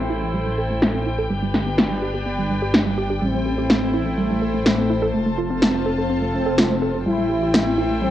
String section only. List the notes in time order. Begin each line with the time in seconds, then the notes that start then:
Already playing: E4 A4 C5 G5
1.30 D4 G4 B4
3.22 E4 A4 C5
5.14 F4 A4 A5
7.06 E4 A4 C5 G5